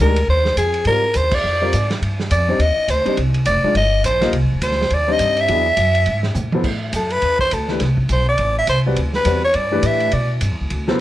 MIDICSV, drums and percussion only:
0, 0, Header, 1, 2, 480
1, 0, Start_track
1, 0, Tempo, 289575
1, 1424, Time_signature, 4, 2, 24, 8
1, 18240, End_track
2, 0, Start_track
2, 0, Title_t, "Drums"
2, 270, Note_on_c, 9, 51, 66
2, 436, Note_off_c, 9, 51, 0
2, 749, Note_on_c, 9, 38, 39
2, 914, Note_off_c, 9, 38, 0
2, 944, Note_on_c, 9, 44, 57
2, 944, Note_on_c, 9, 51, 67
2, 1109, Note_off_c, 9, 44, 0
2, 1109, Note_off_c, 9, 51, 0
2, 1222, Note_on_c, 9, 51, 40
2, 1388, Note_off_c, 9, 51, 0
2, 1406, Note_on_c, 9, 51, 61
2, 1572, Note_off_c, 9, 51, 0
2, 1886, Note_on_c, 9, 44, 62
2, 1886, Note_on_c, 9, 51, 70
2, 2052, Note_off_c, 9, 44, 0
2, 2052, Note_off_c, 9, 51, 0
2, 2177, Note_on_c, 9, 49, 76
2, 2184, Note_on_c, 9, 36, 88
2, 2343, Note_off_c, 9, 49, 0
2, 2350, Note_off_c, 9, 36, 0
2, 2863, Note_on_c, 9, 44, 60
2, 2863, Note_on_c, 9, 51, 72
2, 3029, Note_off_c, 9, 44, 0
2, 3029, Note_off_c, 9, 51, 0
2, 3158, Note_on_c, 9, 38, 52
2, 3160, Note_on_c, 9, 51, 41
2, 3324, Note_off_c, 9, 38, 0
2, 3325, Note_off_c, 9, 51, 0
2, 3356, Note_on_c, 9, 51, 60
2, 3522, Note_off_c, 9, 51, 0
2, 3640, Note_on_c, 9, 38, 43
2, 3806, Note_off_c, 9, 38, 0
2, 3823, Note_on_c, 9, 44, 60
2, 3823, Note_on_c, 9, 51, 69
2, 3989, Note_off_c, 9, 44, 0
2, 3989, Note_off_c, 9, 51, 0
2, 4303, Note_on_c, 9, 51, 61
2, 4469, Note_off_c, 9, 51, 0
2, 4780, Note_on_c, 9, 44, 59
2, 4780, Note_on_c, 9, 51, 69
2, 4945, Note_off_c, 9, 44, 0
2, 4945, Note_off_c, 9, 51, 0
2, 5071, Note_on_c, 9, 51, 40
2, 5236, Note_off_c, 9, 51, 0
2, 5257, Note_on_c, 9, 51, 59
2, 5423, Note_off_c, 9, 51, 0
2, 5540, Note_on_c, 9, 51, 46
2, 5706, Note_off_c, 9, 51, 0
2, 5727, Note_on_c, 9, 44, 63
2, 5727, Note_on_c, 9, 51, 73
2, 5893, Note_off_c, 9, 44, 0
2, 5893, Note_off_c, 9, 51, 0
2, 6216, Note_on_c, 9, 51, 58
2, 6381, Note_off_c, 9, 51, 0
2, 6699, Note_on_c, 9, 44, 67
2, 6699, Note_on_c, 9, 51, 70
2, 6865, Note_off_c, 9, 44, 0
2, 6865, Note_off_c, 9, 51, 0
2, 6986, Note_on_c, 9, 38, 50
2, 6987, Note_on_c, 9, 51, 44
2, 7151, Note_off_c, 9, 38, 0
2, 7153, Note_off_c, 9, 51, 0
2, 7174, Note_on_c, 9, 51, 62
2, 7340, Note_off_c, 9, 51, 0
2, 7651, Note_on_c, 9, 44, 61
2, 7651, Note_on_c, 9, 51, 74
2, 7815, Note_on_c, 9, 38, 31
2, 7817, Note_off_c, 9, 44, 0
2, 7817, Note_off_c, 9, 51, 0
2, 7981, Note_off_c, 9, 38, 0
2, 7982, Note_on_c, 9, 38, 44
2, 8129, Note_on_c, 9, 51, 58
2, 8148, Note_off_c, 9, 38, 0
2, 8295, Note_off_c, 9, 51, 0
2, 8603, Note_on_c, 9, 44, 61
2, 8603, Note_on_c, 9, 51, 75
2, 8769, Note_off_c, 9, 44, 0
2, 8769, Note_off_c, 9, 51, 0
2, 8896, Note_on_c, 9, 51, 43
2, 9061, Note_off_c, 9, 51, 0
2, 9088, Note_on_c, 9, 51, 63
2, 9254, Note_off_c, 9, 51, 0
2, 9561, Note_on_c, 9, 44, 49
2, 9561, Note_on_c, 9, 51, 76
2, 9727, Note_off_c, 9, 44, 0
2, 9727, Note_off_c, 9, 51, 0
2, 9857, Note_on_c, 9, 51, 50
2, 10023, Note_off_c, 9, 51, 0
2, 10041, Note_on_c, 9, 51, 60
2, 10207, Note_off_c, 9, 51, 0
2, 10329, Note_on_c, 9, 38, 38
2, 10495, Note_off_c, 9, 38, 0
2, 10519, Note_on_c, 9, 43, 49
2, 10521, Note_on_c, 9, 44, 54
2, 10685, Note_off_c, 9, 43, 0
2, 10687, Note_off_c, 9, 44, 0
2, 10813, Note_on_c, 9, 48, 54
2, 10979, Note_off_c, 9, 48, 0
2, 11003, Note_on_c, 9, 36, 71
2, 11005, Note_on_c, 9, 49, 60
2, 11169, Note_off_c, 9, 36, 0
2, 11170, Note_off_c, 9, 49, 0
2, 11482, Note_on_c, 9, 44, 62
2, 11482, Note_on_c, 9, 51, 67
2, 11648, Note_off_c, 9, 44, 0
2, 11648, Note_off_c, 9, 51, 0
2, 11775, Note_on_c, 9, 51, 43
2, 11941, Note_off_c, 9, 51, 0
2, 11963, Note_on_c, 9, 51, 52
2, 12129, Note_off_c, 9, 51, 0
2, 12251, Note_on_c, 9, 36, 58
2, 12417, Note_off_c, 9, 36, 0
2, 12451, Note_on_c, 9, 44, 53
2, 12451, Note_on_c, 9, 51, 70
2, 12617, Note_off_c, 9, 44, 0
2, 12617, Note_off_c, 9, 51, 0
2, 12731, Note_on_c, 9, 38, 31
2, 12897, Note_off_c, 9, 38, 0
2, 12925, Note_on_c, 9, 38, 35
2, 12927, Note_on_c, 9, 51, 59
2, 13091, Note_off_c, 9, 38, 0
2, 13093, Note_off_c, 9, 51, 0
2, 13214, Note_on_c, 9, 36, 54
2, 13379, Note_off_c, 9, 36, 0
2, 13410, Note_on_c, 9, 44, 47
2, 13410, Note_on_c, 9, 51, 59
2, 13576, Note_off_c, 9, 44, 0
2, 13576, Note_off_c, 9, 51, 0
2, 13887, Note_on_c, 9, 51, 57
2, 14052, Note_off_c, 9, 51, 0
2, 14374, Note_on_c, 9, 44, 59
2, 14374, Note_on_c, 9, 51, 72
2, 14539, Note_off_c, 9, 44, 0
2, 14539, Note_off_c, 9, 51, 0
2, 14859, Note_on_c, 9, 51, 62
2, 15025, Note_off_c, 9, 51, 0
2, 15140, Note_on_c, 9, 38, 36
2, 15306, Note_off_c, 9, 38, 0
2, 15331, Note_on_c, 9, 44, 59
2, 15331, Note_on_c, 9, 51, 75
2, 15496, Note_off_c, 9, 44, 0
2, 15496, Note_off_c, 9, 51, 0
2, 15808, Note_on_c, 9, 51, 56
2, 15974, Note_off_c, 9, 51, 0
2, 16289, Note_on_c, 9, 44, 50
2, 16289, Note_on_c, 9, 51, 74
2, 16455, Note_off_c, 9, 44, 0
2, 16455, Note_off_c, 9, 51, 0
2, 16581, Note_on_c, 9, 51, 38
2, 16746, Note_off_c, 9, 51, 0
2, 16767, Note_on_c, 9, 51, 63
2, 16933, Note_off_c, 9, 51, 0
2, 17252, Note_on_c, 9, 44, 60
2, 17252, Note_on_c, 9, 51, 69
2, 17418, Note_off_c, 9, 44, 0
2, 17418, Note_off_c, 9, 51, 0
2, 17740, Note_on_c, 9, 51, 56
2, 17906, Note_off_c, 9, 51, 0
2, 18029, Note_on_c, 9, 38, 40
2, 18195, Note_off_c, 9, 38, 0
2, 18240, End_track
0, 0, End_of_file